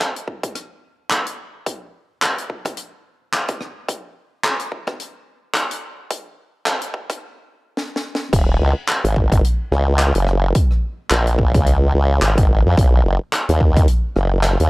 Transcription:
0.00 clap, closed hi-hat
0.16 closed hi-hat
0.28 kick
0.43 kick, closed hi-hat
0.55 cross-stick, closed hi-hat
1.10 clap, closed hi-hat
1.27 closed hi-hat
1.66 kick, closed hi-hat
2.22 clap, closed hi-hat
2.38 closed hi-hat
2.50 kick
2.65 kick, cross-stick, closed hi-hat
2.77 closed hi-hat
3.33 clap, closed hi-hat
3.48 kick, cross-stick, closed hi-hat
3.61 cross-stick
3.89 kick, closed hi-hat
4.44 clap, closed hi-hat
4.60 closed hi-hat
4.72 kick
4.87 kick, cross-stick
5.00 closed hi-hat
5.54 clap, closed hi-hat
5.71 closed hi-hat
6.10 kick, closed hi-hat
6.66 clap, closed hi-hat
6.82 closed hi-hat
6.94 kick
7.10 kick, cross-stick, closed hi-hat
7.77 snare
7.96 snare
8.15 snare
8.33 D#1, kick, closed hi-hat, crash
8.61 C#2
8.87 clap, closed hi-hat
9.04 G#1, closed hi-hat
9.16 kick
9.32 kick, closed hi-hat
9.44 closed hi-hat
9.72 C#2, cross-stick
9.99 clap, closed hi-hat
10.15 F#1, closed hi-hat
10.27 cross-stick
10.55 kick, closed hi-hat
10.71 cross-stick
11.10 A#1, clap, closed hi-hat
11.27 closed hi-hat
11.39 kick
11.54 C#2, kick, closed hi-hat
11.66 closed hi-hat
11.94 C#2
12.22 G#1, clap, closed hi-hat
12.38 kick, closed hi-hat
12.66 F2
12.77 B1, kick, closed hi-hat
13.05 F#1
13.33 clap, closed hi-hat
13.49 D#2, closed hi-hat
13.61 kick
13.77 kick, closed hi-hat
13.88 closed hi-hat
14.16 F#1, cross-stick
14.43 clap, closed hi-hat
14.60 D#2, closed hi-hat

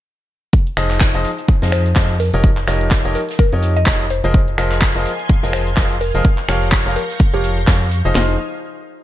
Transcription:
0.53 kick, closed hi-hat, shaker
0.67 closed hi-hat
0.77 F1 F3 D#4 F4 G#4 C5 D#5, finger snap, closed hi-hat, open hi-hat, shaker
0.90 snare, clap, closed hi-hat, shaker
1.00 kick, snare, clap, closed hi-hat, shaker
1.15 F1 F3 D#4 F4 G#4 C5 D#5, closed hi-hat
1.24 closed hi-hat, open hi-hat, shaker
1.38 closed hi-hat, shaker
1.48 kick, closed hi-hat, shaker
1.62 F2 F3 D#4 F4 G#4 C5 D#5, snare, closed hi-hat
1.72 C5, finger snap, closed hi-hat, open hi-hat, shaker
1.86 closed hi-hat, shaker
1.96 F2 F3 D#4 F4 G#4 C5 D#5, kick, snare, clap, closed hi-hat, shaker
2.10 closed hi-hat
2.20 A#4, open hi-hat, shaker
2.34 F1 F3 D#4 G4 A#4 C#5 D#5, closed hi-hat, shaker
2.44 kick, closed hi-hat, shaker
2.57 clap, closed hi-hat
2.67 F1 F3 D#4 G4 A#4 C#5 D#5, finger snap, closed hi-hat, open hi-hat, shaker
2.81 closed hi-hat, shaker
2.91 kick, snare, clap, closed hi-hat, shaker
3.05 F1 F3 D#4 G4 A#4 C#5 D#5, closed hi-hat
3.15 A#4, closed hi-hat, open hi-hat, shaker
3.29 snare, closed hi-hat, shaker
3.39 A#4, kick, closed hi-hat, shaker
3.53 F2 F3 D#4 G4 A#4 C#5 D#5, closed hi-hat
3.62 closed hi-hat, open hi-hat, shaker
3.76 D#5, closed hi-hat, shaker
3.86 F1 F3 D#4 G4 A#4 C#5 D#5, kick, snare, clap, shaker
4.00 closed hi-hat
4.10 C5, closed hi-hat, open hi-hat, shaker
4.24 F1 F3 F4 G#4 A#4 C5 D#5, closed hi-hat, shaker
4.34 F5 G#5 C6, kick, closed hi-hat, shaker
4.48 closed hi-hat
4.58 F1 F3 F4 G#4 A#4 C5 D#5, finger snap, closed hi-hat, open hi-hat, shaker
4.71 snare, clap, closed hi-hat, shaker
4.81 kick, snare, clap, closed hi-hat, shaker
4.95 F1 F3 F4 G#4 A#4 C5 D#5, closed hi-hat
5.05 closed hi-hat, open hi-hat, shaker
5.19 closed hi-hat, shaker
5.29 kick, closed hi-hat, shaker
5.43 F1 F3 F4 G#4 A#4 C5 D#5, snare, closed hi-hat
5.53 C5, finger snap, closed hi-hat, open hi-hat, shaker
5.67 closed hi-hat, shaker
5.77 F1 F3 F4 G#4 A#4 C5 D#5, kick, snare, clap, closed hi-hat, shaker
5.91 closed hi-hat
6.01 A#4, open hi-hat, shaker
6.15 F1 F3 F4 G#4 A#4 C5 D#5, closed hi-hat, shaker
6.25 C#6 G6 A#6, kick, closed hi-hat, shaker
6.38 clap, closed hi-hat
6.48 F1 F3 F4 G4 A#4 C#5 F5, finger snap, closed hi-hat, open hi-hat, shaker
6.62 closed hi-hat, shaker
6.72 kick, snare, clap, closed hi-hat, shaker
6.86 F1 F3 F4 G4 A#4 C#5 F5, closed hi-hat
6.96 A#4, closed hi-hat, open hi-hat, shaker
7.10 snare, closed hi-hat, shaker
7.20 kick, closed hi-hat, shaker
7.34 F1 F3 F4 G4 A#4 C#5 F5, closed hi-hat
7.44 closed hi-hat, open hi-hat, shaker
7.58 closed hi-hat, shaker
7.67 F2 F3 F4 G4 A#4 C#5 F5, kick, snare, clap, closed hi-hat, shaker
7.81 closed hi-hat
7.92 closed hi-hat, open hi-hat, shaker
8.05 F1 F3 D#4 F4 G#4 C5 D#5, closed hi-hat, shaker
8.15 F1 D#4 F4 G#4 C5 D#5, snare, clap

